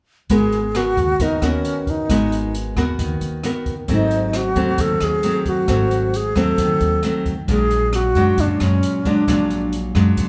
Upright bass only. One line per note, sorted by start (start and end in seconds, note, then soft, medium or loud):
0.30 0.93 G#1 medium
0.97 1.18 D#2 medium
1.20 1.40 D#2 medium
1.42 1.62 D#2 medium
2.10 2.72 G#1 medium
2.77 2.97 D#2 medium
2.99 3.20 D#2 medium
3.21 3.42 D#2 medium
3.88 4.52 G#1 medium
4.56 4.77 D#2 medium
4.78 4.99 D#2 medium
5.01 5.22 D#2 medium
5.68 6.31 G#1 medium
6.36 6.56 D#2 medium
6.58 6.79 D#2 medium
6.81 7.01 D#2 medium
7.48 8.11 A#1 medium
8.15 8.36 F#2 medium
8.38 8.59 F#2 medium
8.60 8.81 F#2 medium
9.28 9.91 A#1 medium
9.95 10.16 F#2 medium
10.18 10.29 F#2 medium